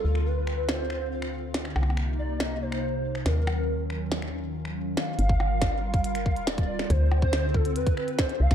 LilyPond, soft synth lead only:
\new Staff \with { instrumentName = "Soft synth lead" } { \time 4/4 \key g \minor \tempo 4 = 140 a'8 b'4 c''2 r8 | r4 d''8 ees''8 c''4. bes'8~ | bes'4. r2 f''8~ | f''2 f''4 d''4 |
c''8. c''8. a'8 b'4 c''8 f''8 | }